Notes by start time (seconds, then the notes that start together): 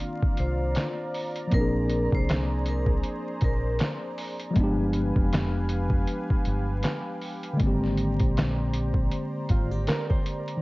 Already playing: D#3 A#3 C4 D4 F4 D5 F5 A#5
0.00 closed hi-hat
0.23 kick
0.37 C2 C5, closed hi-hat
0.75 snare, clap, closed hi-hat
1.14 open hi-hat
1.36 closed hi-hat
1.47 F3 A#3
1.52 A#1 C4 G#4 A#4 C5, kick, closed hi-hat
1.57 D4 G#4
1.90 closed hi-hat
2.12 C2 C5, kick
2.29 snare, clap, closed hi-hat
2.66 A#4, closed hi-hat
2.86 kick
3.04 closed hi-hat
3.41 A#1 A#4, kick, closed hi-hat
3.79 snare, clap, closed hi-hat
4.18 open hi-hat
4.39 closed hi-hat
4.51 F3 G#3
4.55 G1 B3 G4 B4 F5 G#5, kick, closed hi-hat
4.60 D4 G4
4.93 closed hi-hat
5.16 F1, kick
5.33 snare, clap, closed hi-hat
5.69 closed hi-hat
5.90 kick
6.07 closed hi-hat
6.30 kick
6.45 G1, closed hi-hat
6.83 snare, clap, closed hi-hat
7.21 open hi-hat
7.43 closed hi-hat
7.53 D3 G#3
7.60 G#1 A#3 C4 C5 D5 A#5, kick, closed hi-hat
7.67 G4
7.84 snare
7.97 closed hi-hat
8.20 A#1, kick, closed hi-hat
8.37 snare, clap, closed hi-hat
8.74 closed hi-hat
8.94 kick
9.12 closed hi-hat
9.49 G#1 F4, kick, closed hi-hat
9.71 G4
9.87 A#4, snare, clap, closed hi-hat
10.10 C5, kick
10.26 closed hi-hat
10.48 closed hi-hat
10.57 D#3